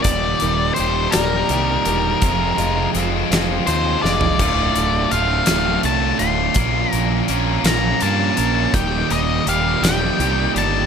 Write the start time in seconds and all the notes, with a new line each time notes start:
0.02 D#1 D#2 A#2 D#3 G3 G4 D5, kick, closed hi-hat
0.07 D#2
0.40 D#1 D#3 G3 G4, closed hi-hat
0.74 A#2 D#3 G3 C5, closed hi-hat
0.78 D#1 G4
1.11 D#1 G4 A#4, snare, closed hi-hat
1.15 D#2 A#2 D#3 G3
1.49 C2 A#2 D#3 G3, closed hi-hat
1.54 G4
1.85 E1 D#3 G3 G4, closed hi-hat
2.22 F1 F2 C3 F3 G#3 C4, kick, closed hi-hat
2.27 F4
2.58 F1 F3 G#3 C4 F4, closed hi-hat
2.94 F1 F3 G#3 C4 F4, closed hi-hat
3.31 F1 F2 C3 F3 G#3 C4 F4, snare, closed hi-hat
3.67 D#2 F3 G#3 C4 F4 C5, closed hi-hat
4.02 F1 G#3 C4 F4 D5, snare
4.07 F3
4.21 floor tom
4.39 D1 D2 A2 D3 A3 F4, kick, closed hi-hat, crash
4.75 D1 D3 A3 F4, closed hi-hat
5.11 D1 A2 D3 A3 F4 F5, closed hi-hat
5.46 D1 D2 A2 D3 A3 F4, snare, closed hi-hat
5.83 C2 A2 D3 A3 F4 A5, closed hi-hat
6.19 D1 D3 A3 F4 C6, closed hi-hat
6.54 A#1 A#2 F3 A#3 C#4 F4 A#4, kick, closed hi-hat
6.92 A#1 A#3 C#4 F4 A#4 A#5, closed hi-hat
7.28 A#1 A#3 C#4 F4 A#4, closed hi-hat
7.64 A#1 A#2 F3 A#3 C#4 F4 A#4 A#5, snare, closed hi-hat
8.01 G2 A#3 C#4 F4 A#4 A5, closed hi-hat
8.37 A#1 A#3 C#4 F4 A#4, closed hi-hat
8.73 D#1 D#2 A#2 D#3 G3 G4 G5, kick, closed hi-hat
9.09 D#1 D#3 G3 G4 D#5, closed hi-hat
9.46 D#1 A#2 D#3 G3 G4 F5, closed hi-hat
9.82 D#1 D#2 A#2 D#3 G3 G4 G5, snare, closed hi-hat
10.19 C2 A#2 D#3 G3 G4, closed hi-hat
10.54 G1 D#3 G3 G4 A5, closed hi-hat